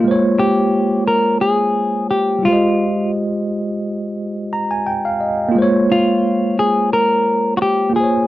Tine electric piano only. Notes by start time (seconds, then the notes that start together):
Already playing: A#3
0.00 G#3 F4
0.08 C5 C#5
2.39 G3 F4
2.45 G#3 G4
2.49 C5 D#5
4.53 A#5
4.71 G#5
4.86 G5
5.05 F5
5.20 D#5
5.49 A#3 F4
5.55 G#3 C5
5.62 C#5
7.90 A#3 F4
7.97 G#4 C5
8.04 C#5